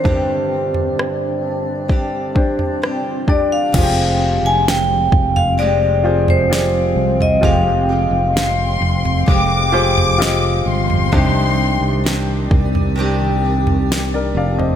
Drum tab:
CC |----------------|x---------------|----------------|----------------|
SD |----r-------r---|----o-------o---|----o-------o---|----o-------o---|
FT |o--o-------o--o-|o-----oo---o---o|o-----oo---o---o|o-----oo---o---o|
BD |o-------o-o---o-|o-----o---------|o-------o-------|o-----o---------|